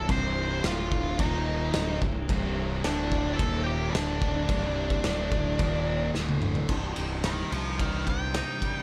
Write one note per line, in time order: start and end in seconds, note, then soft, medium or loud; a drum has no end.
0.00 0.64 C3 medium
0.00 0.64 C4 medium
0.00 0.64 D#4 medium
0.00 0.64 G4 medium
0.09 0.60 C1 medium
0.09 0.63 C2 medium
0.09 0.64 G2 medium
0.09 0.64 C3 loud
0.09 0.62 C5 medium
0.09 0.67 C6 loud
0.09 kick loud
0.09 crash medium
0.62 1.15 D1 loud
0.62 1.18 D2 medium
0.62 1.19 A2 loud
0.62 1.18 D3 medium
0.62 1.19 D3 loud
0.62 1.18 A3 medium
0.62 1.18 A4 medium
0.62 1.18 D5 medium
0.62 1.16 F5 loud
0.62 snare loud
0.62 crash medium
0.67 1.17 F4 medium
0.92 kick medium
1.17 1.70 D#1 medium
1.17 1.74 D#2 loud
1.17 1.74 A#2 loud
1.17 1.74 D#3 loud
1.17 1.73 A#3 medium
1.17 2.82 D#4 medium
1.17 1.98 D#4 medium
1.17 1.74 A#4 medium
1.17 1.98 D#5 medium
1.17 kick loud
1.17 crash medium
1.70 2.81 C3 medium
1.70 2.81 C4 medium
1.70 2.81 G4 medium
1.70 snare loud
1.70 crash medium
1.75 2.00 D1 loud
1.75 2.01 D2 medium
1.75 2.02 A2 loud
1.75 2.02 D3 loud
2.02 2.27 C1 medium
2.02 2.24 C2 medium
2.02 2.24 G2 medium
2.02 kick medium
2.28 2.80 C1 loud
2.28 2.84 C2 medium
2.28 2.85 G2 medium
2.28 2.86 C3 loud
2.28 kick loud
2.28 crash medium
2.79 3.37 D3 medium
2.79 3.37 A3 medium
2.79 3.36 D5 medium
2.84 3.35 D1 medium
2.84 3.40 D2 medium
2.84 3.40 A2 loud
2.84 3.42 D3 loud
2.84 3.36 D4 medium
2.84 3.41 D5 medium
2.84 snare loud
2.84 crash medium
3.12 kick medium
3.34 3.91 A#3 medium
3.34 3.92 D#4 medium
3.34 3.63 A4 medium
3.34 3.92 A#4 medium
3.34 3.62 A5 loud
3.39 3.90 D#1 medium
3.39 3.94 D#2 medium
3.39 3.94 A#2 loud
3.39 3.95 D#3 medium
3.39 kick loud
3.39 crash medium
3.64 3.92 G4 medium
3.64 3.91 G5 loud
3.90 6.10 D4 medium
3.90 6.08 D5 medium
3.94 4.45 D1 loud
3.94 4.48 D2 loud
3.94 4.49 A2 loud
3.94 4.48 D3 medium
3.94 4.49 D3 loud
3.94 4.49 A3 medium
3.94 4.49 A4 medium
3.94 4.49 D5 medium
3.94 snare loud
3.94 crash medium
4.22 kick medium
4.48 5.00 C1 medium
4.48 5.03 C2 loud
4.48 5.04 G2 medium
4.48 5.04 C3 medium
4.48 5.04 C3 loud
4.48 5.03 D#3 medium
4.48 5.03 C4 medium
4.48 5.04 G4 medium
4.48 kick loud
4.48 crash medium
4.90 kick medium
5.04 5.55 D1 loud
5.04 5.58 D2 medium
5.04 5.59 A2 medium
5.04 5.59 D3 medium
5.04 5.59 D3 loud
5.04 5.60 A3 medium
5.04 5.59 A4 medium
5.04 5.59 D5 medium
5.04 snare loud
5.04 crash medium
5.32 kick medium
5.59 6.10 D#1 medium
5.59 6.13 D#2 loud
5.59 6.14 A#2 loud
5.59 6.14 D#3 loud
5.59 6.15 A#3 medium
5.59 kick loud
5.59 crash medium
5.63 6.16 D#3 medium
5.63 6.16 A#4 medium
6.14 6.65 D1 loud
6.14 6.68 D2 loud
6.14 6.69 A2 loud
6.14 6.69 D3 loud
6.14 6.70 D3 medium
6.14 6.70 A3 medium
6.14 6.69 A4 medium
6.14 6.70 D5 medium
6.14 snare medium
6.29 high tom medium
6.42 mid tom medium
6.55 floor tom medium
6.69 6.91 C1 medium
6.69 7.50 C2 medium
6.69 8.07 C2 medium
6.69 7.51 G2 medium
6.69 7.51 C3 medium
6.69 7.51 G3 medium
6.69 kick loud
6.69 crash loud
6.73 7.50 D#4 medium
6.96 7.42 C1 medium
6.96 7.53 C3 medium
6.96 ride medium
7.24 8.36 D#4 medium
7.24 7.52 A#4 medium
7.24 7.51 D#5 medium
7.24 snare loud
7.24 ride medium
7.51 8.42 C2 medium
7.51 8.83 G2 medium
7.51 8.83 C3 medium
7.51 8.09 C3 medium
7.51 8.83 G3 medium
7.51 8.83 D#4 medium
7.51 7.78 C5 medium
7.51 7.80 F5 medium
7.51 ride medium
7.55 8.83 C2 medium
7.79 8.83 G2 medium
7.79 8.06 D#5 medium
7.79 8.07 G5 medium
7.79 kick loud
7.79 ride medium
8.07 8.83 C3 medium
8.07 8.83 G5 medium
8.07 kick medium
8.07 ride medium
8.34 8.83 D#4 medium
8.34 snare loud
8.34 ride medium
8.62 8.83 G3 medium
8.62 kick medium
8.62 ride medium